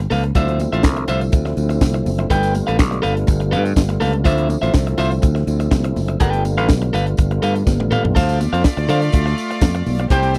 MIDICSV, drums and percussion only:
0, 0, Header, 1, 2, 480
1, 0, Start_track
1, 0, Tempo, 487805
1, 345, Time_signature, 4, 2, 24, 8
1, 10219, End_track
2, 0, Start_track
2, 0, Title_t, "Drums"
2, 106, Note_on_c, 9, 63, 81
2, 106, Note_on_c, 9, 64, 83
2, 109, Note_on_c, 9, 54, 52
2, 110, Note_on_c, 9, 46, 73
2, 204, Note_off_c, 9, 63, 0
2, 204, Note_off_c, 9, 64, 0
2, 207, Note_off_c, 9, 54, 0
2, 208, Note_off_c, 9, 46, 0
2, 233, Note_on_c, 9, 42, 49
2, 331, Note_off_c, 9, 42, 0
2, 342, Note_on_c, 9, 62, 41
2, 342, Note_on_c, 9, 64, 80
2, 346, Note_on_c, 9, 36, 94
2, 346, Note_on_c, 9, 42, 80
2, 347, Note_on_c, 9, 54, 54
2, 441, Note_off_c, 9, 62, 0
2, 441, Note_off_c, 9, 64, 0
2, 444, Note_off_c, 9, 42, 0
2, 445, Note_off_c, 9, 36, 0
2, 446, Note_off_c, 9, 54, 0
2, 472, Note_on_c, 9, 62, 30
2, 474, Note_on_c, 9, 42, 48
2, 571, Note_off_c, 9, 62, 0
2, 573, Note_off_c, 9, 42, 0
2, 578, Note_on_c, 9, 63, 70
2, 585, Note_on_c, 9, 54, 56
2, 591, Note_on_c, 9, 42, 77
2, 676, Note_off_c, 9, 63, 0
2, 683, Note_off_c, 9, 54, 0
2, 689, Note_off_c, 9, 42, 0
2, 721, Note_on_c, 9, 42, 43
2, 819, Note_off_c, 9, 42, 0
2, 820, Note_on_c, 9, 38, 119
2, 828, Note_on_c, 9, 36, 124
2, 828, Note_on_c, 9, 62, 37
2, 829, Note_on_c, 9, 54, 94
2, 918, Note_off_c, 9, 38, 0
2, 926, Note_off_c, 9, 62, 0
2, 927, Note_off_c, 9, 36, 0
2, 927, Note_off_c, 9, 54, 0
2, 946, Note_on_c, 9, 62, 40
2, 950, Note_on_c, 9, 42, 43
2, 1045, Note_off_c, 9, 62, 0
2, 1048, Note_off_c, 9, 42, 0
2, 1060, Note_on_c, 9, 42, 69
2, 1072, Note_on_c, 9, 54, 54
2, 1158, Note_off_c, 9, 42, 0
2, 1170, Note_off_c, 9, 54, 0
2, 1191, Note_on_c, 9, 42, 43
2, 1193, Note_on_c, 9, 54, 37
2, 1290, Note_off_c, 9, 42, 0
2, 1291, Note_off_c, 9, 54, 0
2, 1297, Note_on_c, 9, 62, 40
2, 1301, Note_on_c, 9, 54, 62
2, 1306, Note_on_c, 9, 42, 85
2, 1308, Note_on_c, 9, 36, 125
2, 1396, Note_off_c, 9, 62, 0
2, 1400, Note_off_c, 9, 54, 0
2, 1404, Note_off_c, 9, 42, 0
2, 1406, Note_off_c, 9, 36, 0
2, 1425, Note_on_c, 9, 62, 38
2, 1433, Note_on_c, 9, 42, 40
2, 1436, Note_on_c, 9, 38, 32
2, 1523, Note_off_c, 9, 62, 0
2, 1532, Note_off_c, 9, 42, 0
2, 1534, Note_off_c, 9, 38, 0
2, 1543, Note_on_c, 9, 42, 50
2, 1553, Note_on_c, 9, 54, 61
2, 1642, Note_off_c, 9, 42, 0
2, 1651, Note_off_c, 9, 54, 0
2, 1672, Note_on_c, 9, 42, 48
2, 1677, Note_on_c, 9, 54, 38
2, 1771, Note_off_c, 9, 42, 0
2, 1776, Note_off_c, 9, 54, 0
2, 1782, Note_on_c, 9, 54, 91
2, 1783, Note_on_c, 9, 36, 111
2, 1786, Note_on_c, 9, 38, 114
2, 1790, Note_on_c, 9, 62, 41
2, 1790, Note_on_c, 9, 63, 92
2, 1881, Note_off_c, 9, 54, 0
2, 1882, Note_off_c, 9, 36, 0
2, 1884, Note_off_c, 9, 38, 0
2, 1888, Note_off_c, 9, 62, 0
2, 1888, Note_off_c, 9, 63, 0
2, 1910, Note_on_c, 9, 42, 56
2, 2009, Note_off_c, 9, 42, 0
2, 2027, Note_on_c, 9, 46, 70
2, 2029, Note_on_c, 9, 63, 84
2, 2029, Note_on_c, 9, 64, 86
2, 2030, Note_on_c, 9, 54, 51
2, 2126, Note_off_c, 9, 46, 0
2, 2127, Note_off_c, 9, 63, 0
2, 2127, Note_off_c, 9, 64, 0
2, 2128, Note_off_c, 9, 54, 0
2, 2150, Note_on_c, 9, 42, 55
2, 2249, Note_off_c, 9, 42, 0
2, 2266, Note_on_c, 9, 36, 82
2, 2266, Note_on_c, 9, 42, 80
2, 2266, Note_on_c, 9, 62, 42
2, 2266, Note_on_c, 9, 64, 94
2, 2271, Note_on_c, 9, 54, 61
2, 2364, Note_off_c, 9, 42, 0
2, 2364, Note_off_c, 9, 62, 0
2, 2364, Note_off_c, 9, 64, 0
2, 2365, Note_off_c, 9, 36, 0
2, 2369, Note_off_c, 9, 54, 0
2, 2390, Note_on_c, 9, 54, 43
2, 2393, Note_on_c, 9, 42, 55
2, 2488, Note_off_c, 9, 54, 0
2, 2492, Note_off_c, 9, 42, 0
2, 2505, Note_on_c, 9, 54, 60
2, 2505, Note_on_c, 9, 63, 65
2, 2511, Note_on_c, 9, 42, 74
2, 2604, Note_off_c, 9, 54, 0
2, 2604, Note_off_c, 9, 63, 0
2, 2609, Note_off_c, 9, 42, 0
2, 2632, Note_on_c, 9, 54, 34
2, 2638, Note_on_c, 9, 42, 50
2, 2730, Note_off_c, 9, 54, 0
2, 2737, Note_off_c, 9, 42, 0
2, 2745, Note_on_c, 9, 38, 117
2, 2750, Note_on_c, 9, 36, 127
2, 2751, Note_on_c, 9, 54, 91
2, 2844, Note_off_c, 9, 38, 0
2, 2848, Note_off_c, 9, 36, 0
2, 2850, Note_off_c, 9, 54, 0
2, 2873, Note_on_c, 9, 62, 35
2, 2875, Note_on_c, 9, 42, 47
2, 2971, Note_off_c, 9, 62, 0
2, 2973, Note_off_c, 9, 42, 0
2, 2983, Note_on_c, 9, 42, 73
2, 2998, Note_on_c, 9, 54, 50
2, 3082, Note_off_c, 9, 42, 0
2, 3097, Note_off_c, 9, 54, 0
2, 3118, Note_on_c, 9, 42, 46
2, 3217, Note_off_c, 9, 42, 0
2, 3218, Note_on_c, 9, 62, 36
2, 3220, Note_on_c, 9, 54, 65
2, 3230, Note_on_c, 9, 36, 121
2, 3231, Note_on_c, 9, 42, 81
2, 3317, Note_off_c, 9, 62, 0
2, 3318, Note_off_c, 9, 54, 0
2, 3328, Note_off_c, 9, 36, 0
2, 3330, Note_off_c, 9, 42, 0
2, 3353, Note_on_c, 9, 42, 39
2, 3451, Note_off_c, 9, 42, 0
2, 3469, Note_on_c, 9, 42, 50
2, 3474, Note_on_c, 9, 54, 55
2, 3568, Note_off_c, 9, 42, 0
2, 3573, Note_off_c, 9, 54, 0
2, 3594, Note_on_c, 9, 42, 51
2, 3602, Note_on_c, 9, 54, 39
2, 3693, Note_off_c, 9, 42, 0
2, 3700, Note_off_c, 9, 54, 0
2, 3704, Note_on_c, 9, 36, 108
2, 3705, Note_on_c, 9, 54, 100
2, 3708, Note_on_c, 9, 62, 48
2, 3708, Note_on_c, 9, 63, 91
2, 3709, Note_on_c, 9, 38, 113
2, 3802, Note_off_c, 9, 36, 0
2, 3803, Note_off_c, 9, 54, 0
2, 3806, Note_off_c, 9, 62, 0
2, 3806, Note_off_c, 9, 63, 0
2, 3807, Note_off_c, 9, 38, 0
2, 3831, Note_on_c, 9, 42, 57
2, 3833, Note_on_c, 9, 62, 39
2, 3929, Note_off_c, 9, 42, 0
2, 3932, Note_off_c, 9, 62, 0
2, 3944, Note_on_c, 9, 63, 82
2, 3944, Note_on_c, 9, 64, 78
2, 3947, Note_on_c, 9, 46, 64
2, 3956, Note_on_c, 9, 54, 53
2, 4043, Note_off_c, 9, 63, 0
2, 4043, Note_off_c, 9, 64, 0
2, 4045, Note_off_c, 9, 46, 0
2, 4054, Note_off_c, 9, 54, 0
2, 4067, Note_on_c, 9, 42, 50
2, 4165, Note_off_c, 9, 42, 0
2, 4178, Note_on_c, 9, 62, 42
2, 4178, Note_on_c, 9, 64, 92
2, 4183, Note_on_c, 9, 42, 88
2, 4186, Note_on_c, 9, 36, 95
2, 4195, Note_on_c, 9, 54, 66
2, 4277, Note_off_c, 9, 62, 0
2, 4277, Note_off_c, 9, 64, 0
2, 4281, Note_off_c, 9, 42, 0
2, 4284, Note_off_c, 9, 36, 0
2, 4294, Note_off_c, 9, 54, 0
2, 4308, Note_on_c, 9, 42, 55
2, 4308, Note_on_c, 9, 62, 34
2, 4407, Note_off_c, 9, 42, 0
2, 4407, Note_off_c, 9, 62, 0
2, 4417, Note_on_c, 9, 63, 69
2, 4428, Note_on_c, 9, 42, 75
2, 4429, Note_on_c, 9, 54, 53
2, 4515, Note_off_c, 9, 63, 0
2, 4526, Note_off_c, 9, 42, 0
2, 4527, Note_off_c, 9, 54, 0
2, 4554, Note_on_c, 9, 42, 50
2, 4555, Note_on_c, 9, 54, 37
2, 4653, Note_off_c, 9, 42, 0
2, 4654, Note_off_c, 9, 54, 0
2, 4661, Note_on_c, 9, 38, 113
2, 4662, Note_on_c, 9, 62, 38
2, 4668, Note_on_c, 9, 36, 121
2, 4675, Note_on_c, 9, 54, 89
2, 4759, Note_off_c, 9, 38, 0
2, 4760, Note_off_c, 9, 62, 0
2, 4766, Note_off_c, 9, 36, 0
2, 4773, Note_off_c, 9, 54, 0
2, 4792, Note_on_c, 9, 42, 47
2, 4891, Note_off_c, 9, 42, 0
2, 4898, Note_on_c, 9, 42, 67
2, 4917, Note_on_c, 9, 54, 52
2, 4997, Note_off_c, 9, 42, 0
2, 5016, Note_off_c, 9, 54, 0
2, 5030, Note_on_c, 9, 42, 44
2, 5035, Note_on_c, 9, 54, 35
2, 5129, Note_off_c, 9, 42, 0
2, 5133, Note_off_c, 9, 54, 0
2, 5138, Note_on_c, 9, 54, 60
2, 5139, Note_on_c, 9, 62, 37
2, 5146, Note_on_c, 9, 42, 89
2, 5148, Note_on_c, 9, 36, 115
2, 5236, Note_off_c, 9, 54, 0
2, 5238, Note_off_c, 9, 62, 0
2, 5244, Note_off_c, 9, 42, 0
2, 5247, Note_off_c, 9, 36, 0
2, 5272, Note_on_c, 9, 42, 41
2, 5275, Note_on_c, 9, 38, 33
2, 5371, Note_off_c, 9, 42, 0
2, 5373, Note_off_c, 9, 38, 0
2, 5385, Note_on_c, 9, 42, 47
2, 5391, Note_on_c, 9, 54, 59
2, 5483, Note_off_c, 9, 42, 0
2, 5489, Note_off_c, 9, 54, 0
2, 5510, Note_on_c, 9, 42, 50
2, 5517, Note_on_c, 9, 54, 42
2, 5608, Note_off_c, 9, 42, 0
2, 5616, Note_off_c, 9, 54, 0
2, 5623, Note_on_c, 9, 36, 112
2, 5623, Note_on_c, 9, 38, 100
2, 5626, Note_on_c, 9, 54, 97
2, 5629, Note_on_c, 9, 63, 97
2, 5721, Note_off_c, 9, 36, 0
2, 5721, Note_off_c, 9, 38, 0
2, 5725, Note_off_c, 9, 54, 0
2, 5727, Note_off_c, 9, 63, 0
2, 5748, Note_on_c, 9, 42, 61
2, 5752, Note_on_c, 9, 62, 41
2, 5846, Note_off_c, 9, 42, 0
2, 5851, Note_off_c, 9, 62, 0
2, 5865, Note_on_c, 9, 46, 72
2, 5869, Note_on_c, 9, 63, 85
2, 5869, Note_on_c, 9, 64, 84
2, 5875, Note_on_c, 9, 54, 51
2, 5963, Note_off_c, 9, 46, 0
2, 5968, Note_off_c, 9, 63, 0
2, 5968, Note_off_c, 9, 64, 0
2, 5973, Note_off_c, 9, 54, 0
2, 5986, Note_on_c, 9, 42, 54
2, 6084, Note_off_c, 9, 42, 0
2, 6101, Note_on_c, 9, 42, 90
2, 6107, Note_on_c, 9, 36, 98
2, 6109, Note_on_c, 9, 64, 90
2, 6113, Note_on_c, 9, 54, 59
2, 6200, Note_off_c, 9, 42, 0
2, 6205, Note_off_c, 9, 36, 0
2, 6208, Note_off_c, 9, 64, 0
2, 6211, Note_off_c, 9, 54, 0
2, 6230, Note_on_c, 9, 42, 54
2, 6236, Note_on_c, 9, 62, 29
2, 6328, Note_off_c, 9, 42, 0
2, 6335, Note_off_c, 9, 62, 0
2, 6346, Note_on_c, 9, 42, 77
2, 6346, Note_on_c, 9, 63, 68
2, 6348, Note_on_c, 9, 54, 58
2, 6445, Note_off_c, 9, 42, 0
2, 6445, Note_off_c, 9, 63, 0
2, 6446, Note_off_c, 9, 54, 0
2, 6474, Note_on_c, 9, 42, 51
2, 6476, Note_on_c, 9, 54, 33
2, 6573, Note_off_c, 9, 42, 0
2, 6574, Note_off_c, 9, 54, 0
2, 6579, Note_on_c, 9, 38, 123
2, 6589, Note_on_c, 9, 36, 127
2, 6593, Note_on_c, 9, 62, 37
2, 6597, Note_on_c, 9, 54, 89
2, 6678, Note_off_c, 9, 38, 0
2, 6688, Note_off_c, 9, 36, 0
2, 6691, Note_off_c, 9, 62, 0
2, 6696, Note_off_c, 9, 54, 0
2, 6710, Note_on_c, 9, 42, 47
2, 6808, Note_off_c, 9, 42, 0
2, 6824, Note_on_c, 9, 42, 71
2, 6829, Note_on_c, 9, 64, 83
2, 6839, Note_on_c, 9, 54, 56
2, 6922, Note_off_c, 9, 42, 0
2, 6927, Note_off_c, 9, 64, 0
2, 6938, Note_off_c, 9, 54, 0
2, 6955, Note_on_c, 9, 42, 45
2, 7053, Note_off_c, 9, 42, 0
2, 7058, Note_on_c, 9, 54, 57
2, 7068, Note_on_c, 9, 42, 90
2, 7070, Note_on_c, 9, 36, 123
2, 7156, Note_off_c, 9, 54, 0
2, 7167, Note_off_c, 9, 42, 0
2, 7169, Note_off_c, 9, 36, 0
2, 7193, Note_on_c, 9, 42, 42
2, 7195, Note_on_c, 9, 62, 39
2, 7291, Note_off_c, 9, 42, 0
2, 7293, Note_off_c, 9, 62, 0
2, 7308, Note_on_c, 9, 42, 52
2, 7311, Note_on_c, 9, 54, 58
2, 7407, Note_off_c, 9, 42, 0
2, 7409, Note_off_c, 9, 54, 0
2, 7434, Note_on_c, 9, 42, 51
2, 7443, Note_on_c, 9, 54, 36
2, 7533, Note_off_c, 9, 42, 0
2, 7541, Note_off_c, 9, 54, 0
2, 7545, Note_on_c, 9, 36, 99
2, 7546, Note_on_c, 9, 54, 96
2, 7548, Note_on_c, 9, 38, 59
2, 7555, Note_on_c, 9, 62, 41
2, 7555, Note_on_c, 9, 63, 100
2, 7643, Note_off_c, 9, 36, 0
2, 7644, Note_off_c, 9, 54, 0
2, 7647, Note_off_c, 9, 38, 0
2, 7654, Note_off_c, 9, 62, 0
2, 7654, Note_off_c, 9, 63, 0
2, 7678, Note_on_c, 9, 48, 71
2, 7680, Note_on_c, 9, 62, 41
2, 7776, Note_off_c, 9, 48, 0
2, 7778, Note_off_c, 9, 62, 0
2, 7790, Note_on_c, 9, 63, 79
2, 7790, Note_on_c, 9, 64, 77
2, 7791, Note_on_c, 9, 45, 97
2, 7797, Note_on_c, 9, 54, 52
2, 7888, Note_off_c, 9, 63, 0
2, 7888, Note_off_c, 9, 64, 0
2, 7889, Note_off_c, 9, 45, 0
2, 7896, Note_off_c, 9, 54, 0
2, 7921, Note_on_c, 9, 43, 94
2, 8019, Note_off_c, 9, 43, 0
2, 8028, Note_on_c, 9, 62, 43
2, 8028, Note_on_c, 9, 64, 92
2, 8030, Note_on_c, 9, 36, 88
2, 8033, Note_on_c, 9, 49, 107
2, 8038, Note_on_c, 9, 54, 62
2, 8126, Note_off_c, 9, 62, 0
2, 8126, Note_off_c, 9, 64, 0
2, 8129, Note_off_c, 9, 36, 0
2, 8131, Note_off_c, 9, 49, 0
2, 8137, Note_off_c, 9, 54, 0
2, 8156, Note_on_c, 9, 54, 46
2, 8157, Note_on_c, 9, 42, 54
2, 8157, Note_on_c, 9, 62, 34
2, 8255, Note_off_c, 9, 42, 0
2, 8255, Note_off_c, 9, 54, 0
2, 8255, Note_off_c, 9, 62, 0
2, 8267, Note_on_c, 9, 63, 75
2, 8272, Note_on_c, 9, 54, 61
2, 8274, Note_on_c, 9, 42, 85
2, 8366, Note_off_c, 9, 63, 0
2, 8370, Note_off_c, 9, 54, 0
2, 8372, Note_off_c, 9, 42, 0
2, 8402, Note_on_c, 9, 42, 50
2, 8501, Note_off_c, 9, 42, 0
2, 8504, Note_on_c, 9, 38, 127
2, 8510, Note_on_c, 9, 36, 127
2, 8517, Note_on_c, 9, 54, 102
2, 8602, Note_off_c, 9, 38, 0
2, 8609, Note_off_c, 9, 36, 0
2, 8616, Note_off_c, 9, 54, 0
2, 8632, Note_on_c, 9, 62, 39
2, 8639, Note_on_c, 9, 42, 47
2, 8731, Note_off_c, 9, 62, 0
2, 8738, Note_off_c, 9, 42, 0
2, 8742, Note_on_c, 9, 64, 86
2, 8748, Note_on_c, 9, 42, 68
2, 8756, Note_on_c, 9, 54, 52
2, 8840, Note_off_c, 9, 64, 0
2, 8847, Note_off_c, 9, 42, 0
2, 8854, Note_off_c, 9, 54, 0
2, 8868, Note_on_c, 9, 54, 35
2, 8878, Note_on_c, 9, 42, 49
2, 8967, Note_off_c, 9, 54, 0
2, 8976, Note_off_c, 9, 42, 0
2, 8977, Note_on_c, 9, 54, 66
2, 8984, Note_on_c, 9, 62, 43
2, 8989, Note_on_c, 9, 36, 114
2, 8991, Note_on_c, 9, 42, 97
2, 9075, Note_off_c, 9, 54, 0
2, 9083, Note_off_c, 9, 62, 0
2, 9087, Note_off_c, 9, 36, 0
2, 9089, Note_off_c, 9, 42, 0
2, 9118, Note_on_c, 9, 42, 42
2, 9120, Note_on_c, 9, 38, 32
2, 9216, Note_off_c, 9, 42, 0
2, 9219, Note_off_c, 9, 38, 0
2, 9228, Note_on_c, 9, 54, 62
2, 9229, Note_on_c, 9, 42, 50
2, 9327, Note_off_c, 9, 42, 0
2, 9327, Note_off_c, 9, 54, 0
2, 9357, Note_on_c, 9, 42, 56
2, 9358, Note_on_c, 9, 54, 41
2, 9455, Note_off_c, 9, 42, 0
2, 9456, Note_off_c, 9, 54, 0
2, 9459, Note_on_c, 9, 54, 102
2, 9462, Note_on_c, 9, 36, 121
2, 9466, Note_on_c, 9, 63, 99
2, 9467, Note_on_c, 9, 38, 115
2, 9557, Note_off_c, 9, 54, 0
2, 9560, Note_off_c, 9, 36, 0
2, 9565, Note_off_c, 9, 38, 0
2, 9565, Note_off_c, 9, 63, 0
2, 9588, Note_on_c, 9, 62, 41
2, 9589, Note_on_c, 9, 42, 54
2, 9687, Note_off_c, 9, 42, 0
2, 9687, Note_off_c, 9, 62, 0
2, 9705, Note_on_c, 9, 46, 74
2, 9708, Note_on_c, 9, 63, 89
2, 9708, Note_on_c, 9, 64, 87
2, 9710, Note_on_c, 9, 54, 54
2, 9803, Note_off_c, 9, 46, 0
2, 9806, Note_off_c, 9, 63, 0
2, 9806, Note_off_c, 9, 64, 0
2, 9808, Note_off_c, 9, 54, 0
2, 9828, Note_on_c, 9, 42, 56
2, 9926, Note_off_c, 9, 42, 0
2, 9941, Note_on_c, 9, 42, 91
2, 9942, Note_on_c, 9, 36, 98
2, 9942, Note_on_c, 9, 62, 42
2, 9942, Note_on_c, 9, 64, 88
2, 9949, Note_on_c, 9, 54, 66
2, 10039, Note_off_c, 9, 42, 0
2, 10041, Note_off_c, 9, 36, 0
2, 10041, Note_off_c, 9, 62, 0
2, 10041, Note_off_c, 9, 64, 0
2, 10048, Note_off_c, 9, 54, 0
2, 10063, Note_on_c, 9, 54, 42
2, 10065, Note_on_c, 9, 42, 51
2, 10072, Note_on_c, 9, 62, 35
2, 10161, Note_off_c, 9, 54, 0
2, 10164, Note_off_c, 9, 42, 0
2, 10170, Note_off_c, 9, 62, 0
2, 10179, Note_on_c, 9, 54, 61
2, 10182, Note_on_c, 9, 63, 80
2, 10184, Note_on_c, 9, 42, 79
2, 10219, Note_off_c, 9, 42, 0
2, 10219, Note_off_c, 9, 54, 0
2, 10219, Note_off_c, 9, 63, 0
2, 10219, End_track
0, 0, End_of_file